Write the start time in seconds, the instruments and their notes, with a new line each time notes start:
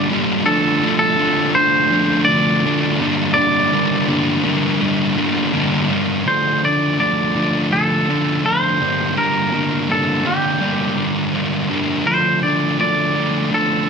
Already playing: distorted electric guitar D4
0.10 distorted electric guitar G2 D3 G3 A#3 D4
0.46 distorted electric guitar D3 F3 A3 D4, clean electric guitar A4
0.83 distorted electric guitar D3 F3 A3 D4
0.99 clean electric guitar A4
1.18 distorted electric guitar D3 F3 A3 D4
1.55 distorted electric guitar D3 F3 A3 D4, clean electric guitar C5
1.91 distorted electric guitar D3 F3 A3 D4
2.25 distorted electric guitar D3 F3 A3, clean electric guitar D5
2.29 distorted electric guitar D4
2.65 distorted electric guitar D3 F3 A3 D4
3.00 distorted electric guitar G2 D3 G3 A#3 D4
3.34 distorted electric guitar G2 D3 G3 A#3 D4, clean electric guitar D5
3.72 distorted electric guitar G2 D3 G3 A#3 D4
4.08 distorted electric guitar G2 D3 G3 A#3 D4
4.44 distorted electric guitar G2 D3 G3 A#3 D4
4.80 distorted electric guitar G2 D3 G3 A#3 D4
5.17 distorted electric guitar G2 D3 G3 A#3 D4
5.53 distorted electric guitar G2 D3 G3 A#3 D4
5.89 distorted electric guitar G2 D3 G3 A#3 D4
6.26 distorted electric guitar D3 F3 A3 D4, clean electric guitar C5
6.63 distorted electric guitar D3 F3 A3 D4, clean electric guitar D5
6.99 distorted electric guitar D3 F3 A3 D4, clean electric guitar D5
7.36 distorted electric guitar D3 F3 A3 D4
7.72 distorted electric guitar D3 F3 A3 D4, clean electric guitar A4
8.08 distorted electric guitar D3 F3 A3 D4
8.44 distorted electric guitar D3 F3 A3 D4, clean electric guitar C5
8.80 distorted electric guitar G2 D3 G3 A#3 D4
9.16 distorted electric guitar G2 D3 G3 A#3 D4, clean electric guitar A#4
9.52 distorted electric guitar G2 D3 G3 A#3 D4
9.89 distorted electric guitar G2 D3 G3 A#3 D4, clean electric guitar A4
10.25 distorted electric guitar G2 D3 G3 A#3 D4, clean electric guitar G4
10.60 distorted electric guitar G2 D3 G3 A#3 D4
10.97 distorted electric guitar G2 D3 G3 A#3 D4
11.21 clean electric guitar F4
11.34 distorted electric guitar G2 D3 G3 A#3 D4
11.69 distorted electric guitar G2 D3 G3 A#3 D4
12.07 distorted electric guitar D3 F3 A3 D4, clean electric guitar C5
12.43 distorted electric guitar D3 F3 A3 D4, clean electric guitar D5
12.79 distorted electric guitar D3 F3 A3 D4, clean electric guitar D5
13.16 distorted electric guitar D3 F3 A3 D4
13.51 distorted electric guitar D3 F3 A3 D4, clean electric guitar A4